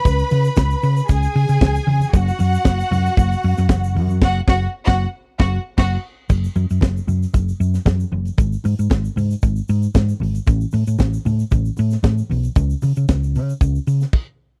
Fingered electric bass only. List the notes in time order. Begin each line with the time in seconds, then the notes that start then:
0.05 C#2
0.32 C#3
0.57 C#2
0.83 C#3
1.09 C#2
1.35 C#3
1.49 C#3
1.62 C#2
1.87 C#3
2.14 F#1
2.40 F#2
2.65 F#1
2.91 F#2
3.18 F#1
3.44 F#2
3.58 F#2
3.69 F#1
3.96 F#2
4.22 F#1
4.48 F#1
4.88 F#1
5.40 F#1
5.78 F#1
6.30 F#1
6.56 F#2
6.71 F#2
6.83 F#1
7.08 F#2
7.34 F#1
7.60 F#2
7.86 F#2
8.12 F#1
8.38 G#1
8.65 G#2
8.79 G#2
8.91 G#1
9.17 G#2
9.43 G#1
9.69 G#2
9.95 G#2
10.21 G#1
10.48 A1
10.74 A2
10.87 A2
11.00 A1
11.26 A2
11.52 A1
11.79 A2
12.04 A2
12.31 B1
12.56 C#2
12.83 C#3
12.97 C#3
13.09 C#2
13.36 C#3
13.61 C#2
13.87 C#3